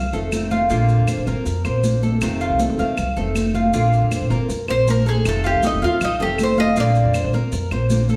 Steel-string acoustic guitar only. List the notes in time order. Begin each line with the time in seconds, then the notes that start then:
0.13 D#3 A3 C4 F4
0.32 D#3 A3 C4 F4
0.70 D3 A#3 C4 F4
1.26 A#3 C4 F4
1.46 muted steel-string acoustic guitar stroke
1.64 A#3 C4 F4
1.83 D3 A#3 C4 F4
2.21 C3 D#3 A3 C4 F4
2.78 D#3 A3 C4 F4
2.98 muted steel-string acoustic guitar stroke
3.16 D#3 A3 C4 F4
3.35 D#3 A3 C4 F4
3.73 D3 A#3 C4 F4
4.30 A#3 C4 F4
4.50 muted steel-string acoustic guitar stroke
4.68 A#3 C4 F4
4.87 D3 A#3 C4 F4
5.25 C3 D#3 A3 C4 F4
5.82 D#3 A3 C4 F4
6.01 muted steel-string acoustic guitar stroke
6.20 D#3 A3 C4 F4
6.39 D#3 A3 C4 F4
6.77 D3 A#3 C4 F4
7.33 A#3 C4 F4
7.53 muted steel-string acoustic guitar stroke
7.72 A#3 C4 F4
7.90 D3 A#3 C4 F4